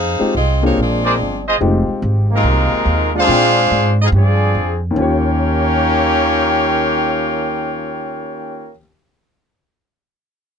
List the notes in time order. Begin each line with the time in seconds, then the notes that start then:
Already playing: F2 D#4 G#4 C5 F5
0.19 G#3 C4 D#4 F4 G4, muted upright bass stroke
0.35 C2 C4 F4 G#4 D#5
0.62 A#3 C4 D4 D#4 F4 G4 G#4 C#5
0.67 A#3
0.77 A#1 F3 G#3 D4 F4
0.82 C4 G#4 D5
1.04 G#4 A#4 C5 D5
1.19 G1
1.47 F4 G#4 C5 D#5
1.61 F1 G#3 C4 D#4 F4 G4
1.89 muted upright bass stroke
2.02 G#1
2.30 C3 D#3 G#3 A#3 D#4 F4 A#4
2.43 C2
2.73 muted upright bass stroke
2.86 D#2
3.14 G#3 D4 F4 G#4 F5
3.18 D4 C5
3.27 A#2 G#3 C4 D4 F4 G5
3.71 G#2
4.01 C4 D#4 F4 G#4 D#5
4.12 G2 F3 C4 D4 F4 G#4
4.16 G#4 D5
4.55 F2
4.91 D#2 D#3
4.96 D#2 D#3 A#3 C#4 F4 G4 A#4 C#5 G5
5.00 G4 C#5